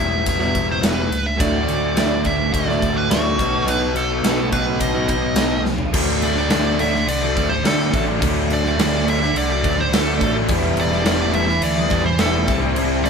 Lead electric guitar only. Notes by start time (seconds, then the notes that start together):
0.00 E5
0.29 E5
0.71 C5
0.85 B4
1.26 E5
1.40 D5
2.27 E5
2.54 D5
2.97 B4
3.10 F#4
3.69 B4
3.97 A4
4.53 B4
4.80 D#5
5.09 D#5
6.24 D5
6.52 D5
6.80 E5
7.09 D5
7.49 C5
7.67 A4
8.53 D5
8.82 D5
9.09 E5
9.38 D5
9.80 C5
9.94 A4
10.80 D5
11.07 D5
11.35 E5
11.63 D5
12.06 C5
12.20 A4
13.05 D5